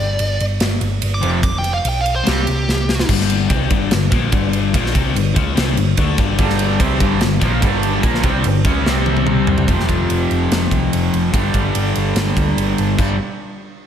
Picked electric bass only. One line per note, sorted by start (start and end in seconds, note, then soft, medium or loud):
0.00 0.17 G1 medium
0.19 0.37 G1 medium
0.41 0.58 G1 medium
0.60 0.78 G1 medium
0.81 0.99 G1 medium
1.03 1.20 G1 medium
1.23 1.41 F1 medium
1.43 1.79 F1 medium
1.85 2.20 B1 medium
2.28 2.45 C2 loud
2.48 2.65 C2 medium
2.68 3.03 C2 medium
3.09 3.47 G1 medium
3.50 3.69 C2 medium
3.70 3.90 G1 loud
3.93 4.11 G1 medium
4.12 4.31 A#1 loud
4.33 4.71 G1 loud
4.74 4.93 A#1 loud
4.96 5.14 C2 medium
5.15 5.34 G1 medium
5.36 5.55 C#2 loud
5.57 5.76 C2 loud
5.77 5.96 G1 medium
5.98 6.17 D2 loud
6.19 6.37 G1 loud
6.39 6.77 G1 loud
6.80 6.99 C2 loud
7.01 7.20 G1 loud
7.22 7.41 G1 medium
7.41 7.61 A#1 loud
7.63 8.01 G1 loud
8.04 8.23 A#1 loud
8.24 8.43 C2 medium
8.45 8.64 G1 medium
8.64 8.84 C#2 loud
8.86 9.64 C2 medium
9.68 9.84 F1 medium
9.89 10.05 F1 medium
10.10 10.25 F1 medium
10.31 10.46 F1 medium
10.51 10.67 F1 medium
10.71 10.87 C2 medium
10.93 11.09 F1 medium
11.14 11.29 F1 medium
11.33 11.49 G1 medium
11.54 11.70 G1 medium
11.75 11.91 G1 medium
11.96 12.11 G1 medium
12.15 12.31 G1 medium
12.37 12.52 D2 medium
12.57 12.73 G1 medium
12.79 12.94 G1 medium
12.99 13.18 G1 medium